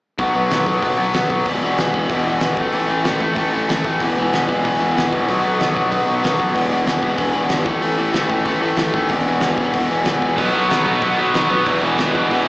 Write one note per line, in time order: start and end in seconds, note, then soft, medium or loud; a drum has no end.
0.18 0.34 B1 medium
0.18 0.35 B2 medium
0.18 0.35 F#3 medium
0.18 0.34 B3 loud
0.18 kick loud
0.18 open hi-hat soft
0.35 0.50 B1 medium
0.35 0.49 B2 medium
0.35 0.50 F#3 medium
0.35 0.52 B3 medium
0.50 0.66 B1 medium
0.50 0.67 B2 medium
0.50 0.66 F#3 medium
0.50 0.65 B3 medium
0.50 snare loud
0.50 open hi-hat medium
0.66 0.82 B1 medium
0.66 0.80 B2 medium
0.66 0.81 F#3 medium
0.66 0.81 B3 medium
0.66 kick medium
0.81 0.98 B1 medium
0.81 0.98 B2 medium
0.81 0.97 F#3 medium
0.81 0.97 B3 medium
0.81 kick medium
0.81 open hi-hat medium
0.98 1.14 B1 medium
0.98 1.12 B2 medium
0.98 1.12 F#3 medium
0.98 1.13 B3 medium
1.13 1.29 B1 medium
1.13 1.29 B2 medium
1.13 1.28 F#3 medium
1.13 1.28 B3 medium
1.13 snare loud
1.13 open hi-hat medium
1.29 1.45 B1 medium
1.29 1.46 B2 medium
1.29 1.45 F#3 medium
1.29 1.45 B3 medium
1.29 kick loud
1.46 1.61 E1 medium
1.46 1.63 E2 medium
1.46 1.62 B2 medium
1.46 1.62 E3 medium
1.46 kick loud
1.46 open hi-hat medium
1.62 1.77 E1 medium
1.62 1.77 E2 medium
1.62 1.79 B2 medium
1.62 1.79 E3 medium
1.78 1.93 E1 medium
1.78 1.94 E2 medium
1.78 1.94 B2 medium
1.78 1.94 E3 medium
1.78 snare loud
1.78 open hi-hat medium
1.94 2.09 E1 medium
1.94 2.09 E2 medium
1.94 2.10 B2 medium
1.94 2.11 E3 loud
1.94 kick medium
2.09 2.24 E1 medium
2.09 2.26 E2 loud
2.09 2.25 B2 loud
2.09 2.26 E3 loud
2.09 kick loud
2.09 open hi-hat medium
2.25 2.41 E1 medium
2.25 2.41 E2 medium
2.25 2.41 B2 medium
2.25 2.42 E3 medium
2.40 2.56 E1 medium
2.40 2.57 E2 medium
2.40 2.57 B2 medium
2.40 2.58 E3 medium
2.40 snare loud
2.40 open hi-hat medium
2.57 2.72 A1 medium
2.57 2.73 A2 medium
2.57 2.73 E3 medium
2.57 2.72 A3 medium
2.57 kick loud
2.72 2.88 A1 medium
2.72 2.86 A2 medium
2.72 2.88 E3 medium
2.72 2.88 A3 medium
2.72 open hi-hat medium
2.87 3.04 A1 medium
2.87 3.03 A2 medium
2.87 3.04 E3 medium
2.87 3.02 A3 medium
3.04 3.19 A1 medium
3.04 3.18 A2 medium
3.04 3.20 E3 medium
3.04 3.20 A3 medium
3.04 snare loud
3.04 open hi-hat medium
3.20 3.36 A1 medium
3.20 3.36 A2 medium
3.20 3.35 E3 medium
3.20 3.34 A3 loud
3.20 kick medium
3.35 3.52 A1 medium
3.35 3.51 A2 medium
3.35 3.52 E3 loud
3.35 3.52 A3 loud
3.35 kick medium
3.35 open hi-hat medium
3.52 3.68 A1 medium
3.52 3.68 A2 medium
3.52 3.68 E3 loud
3.52 3.68 A3 medium
3.69 3.84 A1 medium
3.69 3.83 A2 medium
3.69 3.83 E3 medium
3.69 3.84 A3 medium
3.69 snare loud
3.69 open hi-hat medium
3.84 3.99 A1 medium
3.84 4.00 A2 medium
3.84 4.00 E3 medium
3.84 4.01 A3 medium
3.84 kick medium
4.00 4.16 E1 medium
4.00 4.18 E2 loud
4.00 4.17 B2 medium
4.00 4.17 E3 loud
4.00 kick medium
4.00 open hi-hat medium
4.16 4.32 E1 medium
4.16 4.31 E2 medium
4.16 4.32 B2 medium
4.16 4.33 E3 loud
4.32 4.48 E1 medium
4.32 4.48 E2 medium
4.32 4.48 B2 medium
4.32 4.46 E3 medium
4.32 snare loud
4.32 open hi-hat medium
4.47 4.64 E1 medium
4.47 4.62 E2 medium
4.47 4.63 B2 medium
4.47 4.64 E3 medium
4.47 kick medium
4.63 4.80 E1 medium
4.63 4.79 E2 medium
4.63 4.79 B2 medium
4.63 4.78 E3 loud
4.63 kick medium
4.63 open hi-hat medium
4.79 4.96 E1 medium
4.79 4.93 E2 medium
4.79 4.94 B2 medium
4.79 4.95 E3 loud
4.95 5.12 E1 medium
4.95 5.11 E2 medium
4.95 5.10 B2 medium
4.95 5.10 E3 medium
4.95 snare loud
4.95 open hi-hat medium
5.11 5.28 C2 medium
5.11 5.28 E2 medium
5.11 5.26 B2 medium
5.11 5.27 E3 medium
5.11 kick medium
5.27 5.44 B1 medium
5.27 5.43 B2 medium
5.27 5.42 F#3 medium
5.27 5.42 B3 medium
5.27 kick medium
5.27 open hi-hat medium
5.42 5.60 B1 medium
5.42 5.59 B2 medium
5.42 5.59 F#3 medium
5.42 5.61 B3 medium
5.60 5.76 B1 medium
5.60 5.75 B2 medium
5.60 5.75 F#3 medium
5.60 5.73 B3 medium
5.60 snare loud
5.60 open hi-hat soft
5.75 5.92 B1 medium
5.75 5.89 B2 medium
5.75 5.89 F#3 medium
5.75 5.91 B3 medium
5.75 kick medium
5.90 6.07 B1 medium
5.90 6.07 B2 medium
5.90 6.06 F#3 medium
5.90 6.05 B3 loud
5.90 kick medium
5.90 open hi-hat medium
6.06 6.23 B1 medium
6.06 6.22 B2 medium
6.06 6.22 F#3 medium
6.06 6.23 B3 loud
6.23 6.39 B1 medium
6.23 6.39 B2 medium
6.23 6.38 F#3 medium
6.23 6.37 B3 medium
6.23 snare loud
6.23 open hi-hat medium
6.39 6.55 B1 medium
6.39 6.53 B2 medium
6.39 6.55 F#3 medium
6.39 6.55 B3 medium
6.39 kick medium
6.54 6.71 E1 medium
6.54 6.69 E2 medium
6.54 6.69 B2 medium
6.54 6.69 E3 loud
6.54 kick medium
6.54 open hi-hat medium
6.69 6.87 E1 medium
6.69 6.85 E2 medium
6.69 6.86 B2 medium
6.69 6.87 E3 medium
6.86 7.02 E1 medium
6.86 7.01 E2 medium
6.86 7.01 B2 medium
6.86 7.01 E3 medium
6.86 snare loud
6.86 open hi-hat medium
7.02 7.18 E1 medium
7.02 7.14 E2 medium
7.02 7.16 B2 medium
7.02 7.17 E3 medium
7.02 kick medium
7.16 7.34 E1 medium
7.16 7.33 E2 medium
7.16 7.32 B2 medium
7.16 7.33 E3 loud
7.16 kick medium
7.16 open hi-hat medium
7.33 7.51 E1 medium
7.33 7.49 E2 medium
7.33 7.50 B2 medium
7.33 7.51 E3 medium
7.49 7.65 G1 medium
7.49 7.66 E2 medium
7.49 7.64 B2 medium
7.49 7.65 E3 medium
7.49 snare loud
7.49 open hi-hat medium
7.65 7.82 A1 medium
7.65 7.81 A2 medium
7.65 7.82 E3 medium
7.65 7.80 A3 loud
7.65 kick loud
7.81 7.99 A1 loud
7.81 7.96 A2 medium
7.81 7.98 E3 medium
7.81 7.98 A3 loud
7.81 open hi-hat medium
7.97 8.13 A1 medium
7.97 8.12 A2 medium
7.97 8.12 E3 medium
7.97 8.10 A3 medium
8.12 8.29 A1 medium
8.12 8.27 A2 medium
8.12 8.28 E3 medium
8.12 8.28 A3 medium
8.12 snare medium
8.12 open hi-hat soft
8.28 8.45 A1 medium
8.28 8.45 A2 medium
8.28 8.44 E3 medium
8.28 8.43 A3 medium
8.28 kick medium
8.45 8.61 A1 medium
8.45 8.60 A2 medium
8.45 8.60 E3 medium
8.45 8.62 A3 loud
8.45 kick medium
8.45 open hi-hat medium
8.61 8.78 A1 medium
8.61 8.79 A2 medium
8.61 8.79 E3 loud
8.61 8.77 A3 medium
8.76 8.93 A1 medium
8.76 8.91 A2 medium
8.76 8.93 E3 medium
8.76 8.94 A3 loud
8.76 snare loud
8.76 open hi-hat medium
8.93 9.09 D#2 medium
8.93 9.09 A2 medium
8.93 9.10 E3 medium
8.93 9.10 A3 medium
8.93 kick medium
9.09 9.25 E1 medium
9.09 9.27 E2 medium
9.09 9.26 B2 medium
9.09 9.25 E3 loud
9.09 kick medium
9.09 open hi-hat medium
9.26 9.41 E1 medium
9.26 9.41 E2 medium
9.26 9.42 B2 medium
9.26 9.42 E3 medium
9.40 9.57 E1 medium
9.40 9.58 E2 medium
9.40 9.58 B2 medium
9.40 9.57 E3 loud
9.40 snare loud
9.40 open hi-hat medium
9.57 9.73 E1 medium
9.57 9.73 E2 medium
9.57 9.73 B2 medium
9.57 9.74 E3 medium
9.57 kick medium
9.73 9.89 E1 medium
9.73 9.90 E2 medium
9.73 9.89 B2 medium
9.73 9.89 E3 loud
9.73 kick medium
9.73 open hi-hat medium
9.90 10.05 E1 medium
9.90 10.07 E2 medium
9.90 10.07 B2 medium
9.90 10.08 E3 medium
10.05 10.21 E1 medium
10.05 10.25 E2 medium
10.05 10.24 B2 medium
10.05 snare loud
10.05 open hi-hat medium
10.09 10.23 E3 medium
10.22 10.37 E1 medium
10.22 10.40 E2 medium
10.22 10.38 B2 medium
10.22 10.39 E3 medium
10.22 kick medium
10.38 10.53 B1 medium
10.38 10.54 B2 medium
10.38 10.53 F#3 medium
10.38 10.54 B3 loud
10.38 kick medium
10.38 open hi-hat medium
10.54 10.69 B1 medium
10.54 10.68 B2 medium
10.54 10.69 F#3 medium
10.54 10.70 B3 medium
10.70 10.86 B1 medium
10.70 10.86 B2 medium
10.70 10.85 F#3 medium
10.70 10.84 B3 medium
10.70 snare loud
10.70 open hi-hat medium
10.85 11.02 B1 medium
10.85 11.00 B2 medium
10.85 11.01 F#3 medium
10.85 11.02 B3 medium
10.85 kick medium
11.02 11.17 B1 medium
11.02 11.20 B2 medium
11.02 11.19 F#3 loud
11.02 11.18 B3 medium
11.02 kick loud
11.02 open hi-hat medium
11.19 11.34 B1 medium
11.19 11.33 B2 medium
11.19 11.34 F#3 medium
11.19 11.34 B3 medium
11.34 11.50 B1 medium
11.34 11.51 B2 medium
11.34 11.51 F#3 medium
11.34 11.50 B3 medium
11.34 snare loud
11.34 open hi-hat medium
11.50 11.66 B1 medium
11.50 11.66 B2 medium
11.50 11.67 F#3 medium
11.50 11.66 B3 medium
11.50 kick medium
11.66 11.81 E1 medium
11.66 11.82 E2 medium
11.66 11.81 B2 medium
11.66 11.82 E3 medium
11.66 kick medium
11.66 open hi-hat medium
11.82 11.97 E1 medium
11.82 11.96 E2 medium
11.82 11.97 B2 medium
11.82 11.99 E3 medium
11.98 12.13 E1 medium
11.98 12.15 E2 medium
11.98 12.14 B2 medium
11.98 12.15 E3 medium
11.98 snare loud
11.98 open hi-hat medium
12.15 12.30 E1 medium
12.15 12.30 E2 medium
12.15 12.31 B2 medium
12.15 12.32 E3 medium
12.15 kick medium
12.31 12.46 E1 medium
12.31 12.46 E2 medium
12.31 12.46 B2 loud
12.31 12.46 E3 medium
12.31 kick medium
12.31 open hi-hat medium